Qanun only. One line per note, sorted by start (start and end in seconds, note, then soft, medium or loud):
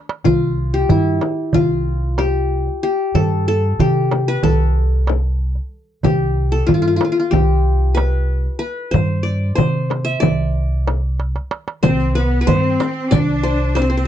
0.00 0.14 D4 medium
0.25 0.96 F4 medium
0.74 1.99 G4 medium
0.90 1.60 E4 medium
1.54 2.89 F4 medium
2.18 2.83 G4 medium
2.83 3.80 G4 medium
3.15 3.48 A4 medium
3.48 4.43 A4 medium
3.80 5.05 G4 medium
4.28 5.38 B4 medium
4.43 5.60 A4 medium
6.04 7.30 G4 medium
6.52 7.69 A4 medium
6.67 6.74 F4 medium
6.74 6.82 F4 medium
6.82 6.87 F4 medium
6.88 6.96 F4 medium
6.96 7.04 F4 medium
7.05 7.12 F4 soft
7.12 7.19 F4 medium
7.20 8.54 F4 medium
7.31 8.56 G4 medium
7.95 8.59 B4 medium
8.59 8.97 B4 medium
8.91 9.55 C5 medium
9.23 10.20 D5 medium
9.55 10.61 C5 medium
10.05 10.97 E5 medium
10.20 11.18 D5 medium
11.83 12.21 C5 medium
12.15 12.41 B4 medium
12.41 12.53 B4 medium
12.47 13.43 C5 medium
13.11 14.07 D5 medium
13.43 13.75 C5 medium
13.75 13.81 C5 medium
13.82 13.89 C5 medium
13.90 13.97 C5 medium
13.97 14.05 C5 medium